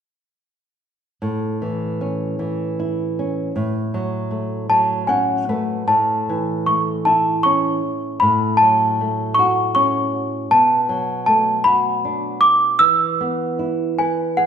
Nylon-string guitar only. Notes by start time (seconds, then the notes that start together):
1.22 A2
1.62 E3
2.01 C#4
2.39 E3
2.79 E4
3.19 C#4
3.56 A2
3.94 F#3
4.31 A3
4.70 F#3
5.09 C#4 F#5
5.49 A3 B4
5.87 A2
6.29 E3
6.68 A3
7.07 E4
7.46 C#4
8.22 A2
8.62 F#3
9.01 A3
9.39 F#4
9.76 C#4
10.51 B2
10.89 F#3
11.28 A3
11.66 F#4
12.05 D4
12.80 E3
13.21 B3
13.59 E4
13.99 B4
14.38 G#4